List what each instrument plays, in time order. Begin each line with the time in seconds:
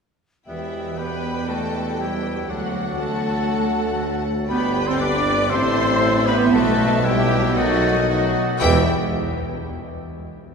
0.47 tuba E1, double bass section E2, cello section E3, bassoon G3, french horn section B3 G4, oboe B3, viola section E4, clarinet B4, flute E5, violin section E5 G5
0.97 french horn section B3 G4, cello section B3, oboe G4, viola section B4, flute B5, violin section B5
1.48 cello section A3, oboe F#4, viola section A4, violin section A5, flute A5
1.99 cello section G3, french horn section B3 G4, oboe E4, viola section G4, flute G5, violin section G5
2.49 tuba D2, double bass section D2, cello section F#3, bassoon F#3, french horn section A3 F#4, oboe D4, viola section F#4, clarinet A4, violin section F#5, flute F#5
2.99 cello section A3, french horn section A3 F#4, oboe F#4, viola section A4, violin section A5, flute A5
4.49 tuba G1, double bass section G1, bassoon G3, cello section B3, french horn section B3 G4, oboe G4, clarinet B4, viola section B4, violin section G5 B5, flute B5
4.87 cello section C4, oboe A4, viola section C5, flute C6, violin section C6
4.98 french horn section B3 G4, cello section D4, oboe B4, viola section D5, flute D6, violin section D6
5.49 tuba A1, double bass section A1, bassoon E3, cello section C4, french horn section C4 E4, oboe A4, viola section C5, clarinet C5, violin section E5 C6, flute C6
6.26 cello section B3, oboe G4, viola section B4, flute B5, violin section B5
6.52 tuba B1, double bass section B1, cello section A3, french horn section B3 E4, oboe F#4, viola section A4, clarinet B4, flute A5, violin section A5
7.04 cello section G3, french horn section B3 E4, oboe E4, viola section G4, flute G5, violin section G5
7.55 bassoon D#3, cello section F#3, french horn section A3 D#4, oboe D#4, viola section F#4, clarinet A4, violin section D#5 F#5, flute F#5
8.08 cello section F#3, french horn section A3 D#4, oboe D#4, viola section F#4, violin section F#5, flute F#5
8.61 tuba E1, double bass section E2, cello section E3, bassoon E3, french horn section G3 E4, viola section E4, clarinet G4, violin section E5 G5, oboe E5, flute E5